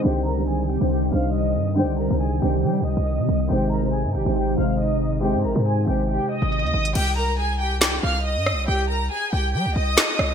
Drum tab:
CC |------------------------------------------------|------------------------------------------------|------------------------------------------------|------------------------------------------------|
HH |x-----------x-----x-----x--------x--------x--x--|x-----------x-----x-----x--------x--x--x-----x--|x-----------x-----x-----x--------x--------x--x--|x-----------x-----x-----x--------x--x-x-x----x--|
CP |------------------------------------------------|------------------------------------------------|------------------------------------------------|------------------------------------------------|
SD |------------------------------------------------|------------------------------------------------|------------------------------------------------|------------------------------------------------|

CC |x-----------------------------------------------|------------------------------------------------|
HH |------------------------------------------------|------------------------------------------------|
CP |------------------------x-----------------------|------------------------------------x-----------|
SD |------------------------o-----------------r-----|------------------------------------o-----r-----|